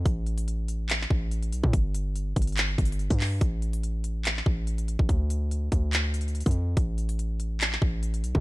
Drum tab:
HH |x-----------x-----x-----x-----------x-----------x-----------------------x-----x-----x-----------|x-----------x-----------x-----------x--x--x--x--x-----------x---x---x---x-----x-----o-----------|x-----------x-----x-----x-----------x-----------x-----------------------x-----x-----x-----------|x-----------x-----------x-----------x-----------x-----------x---x---x---x--x--x--x--------------|
CP |------------------------------------------------x-----x-----------------------------------------|------------------------------------------------x-----------------------------------x-----------|------------------------------------------------x-----x-----------------------------------------|------------------------------------------------x-----------------------------------------------|
BD |o-----------------------------------------------------------o-----------------------------o-----|o-----------------------------------o-----------------------o-----------------o-----------------|o-----------------------------------------------------------o-----------------------------o-----|o-----------------------------------o-----------------------------------------o-----------------|

HH |x-----------x-----x-----x-----------x-----------x-----------------------x-----x-----x-----------|
CP |------------------------------------------------x-----x-----------------------------------------|
BD |o-----------------------------------------------------------o-----------------------------o-----|